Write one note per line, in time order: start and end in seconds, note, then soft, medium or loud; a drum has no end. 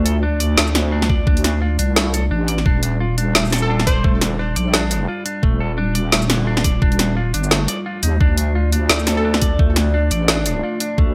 0.00 0.56 D2 loud
0.00 2.62 A3 medium
0.00 2.62 D4 medium
0.00 2.62 F4 medium
0.00 2.62 D5 medium
0.05 0.16 A4 medium
0.05 closed hi-hat medium
0.23 0.39 D4 loud
0.40 0.57 D5 medium
0.40 closed hi-hat medium
0.57 1.26 D2 medium
0.57 0.74 A3 loud
0.57 snare loud
0.67 shaker soft
0.75 0.91 D3 medium
0.75 snare medium
0.75 closed hi-hat medium
0.92 1.08 D4 loud
1.02 snare medium
1.10 1.26 D5 medium
1.10 kick loud
1.27 1.78 D2 medium
1.27 1.43 D4 loud
1.27 kick loud
1.37 closed hi-hat soft
1.44 1.60 D4 medium
1.44 snare medium
1.44 closed hi-hat medium
1.62 1.77 F4 medium
1.79 2.30 C2 loud
1.79 1.95 D4 medium
1.79 closed hi-hat medium
1.79 shaker soft
1.96 2.12 A3 medium
1.96 snare loud
1.96 snare soft
2.14 2.24 A4 medium
2.14 closed hi-hat medium
2.14 shaker soft
2.31 2.64 A1 medium
2.31 2.47 D4 loud
2.48 2.65 D5 medium
2.48 closed hi-hat medium
2.58 snare soft
2.66 3.34 D#1 loud
2.66 8.17 G3 medium
2.66 2.82 D4 loud
2.66 kick loud
2.83 2.99 D4 medium
2.83 closed hi-hat medium
3.00 3.16 F4 medium
3.18 3.34 D4 medium
3.18 closed hi-hat medium
3.35 4.03 D#1 loud
3.35 3.51 A3 medium
3.35 snare loud
3.45 shaker soft
3.47 shaker soft
3.50 3.63 A4 medium
3.50 snare medium
3.50 closed hi-hat medium
3.50 shaker soft
3.53 shaker soft
3.56 shaker soft
3.58 shaker soft
3.62 4.10 A4 medium
3.70 3.86 D4 loud
3.79 snare medium
3.87 4.14 C5 medium
3.87 4.04 D5 medium
3.87 kick loud
3.87 closed hi-hat medium
4.04 4.55 D#1 medium
4.04 4.21 A3 loud
4.04 kick loud
4.21 4.38 D3 medium
4.21 snare medium
4.21 closed hi-hat medium
4.39 4.55 D4 loud
4.56 5.07 A#1 loud
4.56 4.73 D5 medium
4.56 closed hi-hat medium
4.56 shaker soft
4.73 4.90 D4 loud
4.73 snare loud
4.91 5.07 D4 medium
4.91 closed hi-hat medium
4.91 shaker soft
5.08 5.24 F4 medium
5.26 5.42 D4 medium
5.26 closed hi-hat medium
5.43 6.11 D#1 loud
5.43 5.59 A3 medium
5.43 11.14 F4 medium
5.43 kick loud
5.60 5.71 A4 medium
5.78 5.94 D4 loud
5.95 6.12 D5 medium
5.95 closed hi-hat medium
6.12 6.81 D#1 loud
6.12 6.29 A3 loud
6.12 snare loud
6.22 shaker soft
6.30 6.46 D3 medium
6.30 snare medium
6.30 closed hi-hat medium
6.47 6.63 D4 loud
6.57 snare medium
6.64 6.81 D5 medium
6.64 kick loud
6.64 closed hi-hat medium
6.82 7.33 D#1 loud
6.82 6.98 D4 loud
6.82 kick loud
6.92 closed hi-hat soft
6.99 7.15 D4 medium
6.99 snare medium
6.99 closed hi-hat medium
7.17 7.32 F4 medium
7.34 7.67 G1 loud
7.34 7.51 D4 medium
7.34 closed hi-hat medium
7.44 shaker soft
7.51 7.67 A3 medium
7.51 snare loud
7.51 snare soft
7.68 7.79 D5 medium
7.68 closed hi-hat medium
7.68 shaker soft
7.86 8.02 F4 medium
8.03 8.19 D#2 loud
8.03 8.19 D#4 medium
8.03 closed hi-hat medium
8.03 shaker soft
8.21 8.89 D2 loud
8.21 11.14 A3 medium
8.21 11.14 D4 medium
8.21 8.37 D4 loud
8.21 11.14 D5 medium
8.21 kick loud
8.38 8.54 D4 medium
8.38 closed hi-hat medium
8.55 8.71 F4 medium
8.72 8.89 D4 medium
8.72 closed hi-hat medium
8.89 9.58 D2 loud
8.89 9.06 A3 medium
8.89 snare loud
8.99 shaker soft
9.07 9.18 A4 medium
9.07 snare medium
9.07 closed hi-hat medium
9.17 9.65 A4 medium
9.25 9.41 D4 loud
9.34 snare medium
9.42 9.59 D5 medium
9.42 kick loud
9.42 closed hi-hat medium
9.59 10.10 D2 medium
9.59 9.76 A3 loud
9.59 kick loud
9.76 9.92 D3 medium
9.76 snare medium
9.76 closed hi-hat medium
9.94 10.10 D4 loud
10.11 10.62 A1 loud
10.11 10.28 D5 medium
10.11 closed hi-hat medium
10.11 shaker soft
10.28 10.45 D4 loud
10.28 snare loud
10.46 10.62 D4 medium
10.46 closed hi-hat medium
10.46 shaker soft
10.63 10.79 F4 medium
10.80 10.97 D4 medium
10.80 closed hi-hat medium
10.98 11.14 D2 loud
10.98 11.14 A3 medium
10.98 kick loud